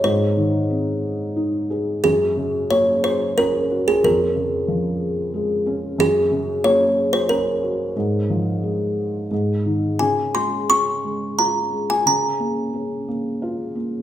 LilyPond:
<<
  \new Staff \with { instrumentName = "Kalimba" } { \time 3/4 \key des \major \tempo 4 = 90 c''2 r4 | aes'4 des''8 c''8 bes'8. aes'16 | bes'2~ bes'8 r8 | aes'4 des''8. c''16 bes'4~ |
bes'2~ bes'8 r8 | aes''8 c'''8 des'''4 bes''8. aes''16 | bes''2~ bes''8 r8 | }
  \new Staff \with { instrumentName = "Felt piano" } { \clef bass \time 3/4 \key des \major aes,8 ees8 c'4 ees'8 aes'8 | ges,8 des8 bes4 des'8 ges'8 | f,8 des8 f4 aes8 des'8 | ges,8 des8 bes4 des'8 ges'8 |
aes,8 f8 aes4 aes,8 ees8 | des8 aes8 des'8 aes8 f'8 aes8 | des8 bes8 des'8 bes8 f'8 bes8 | }
>>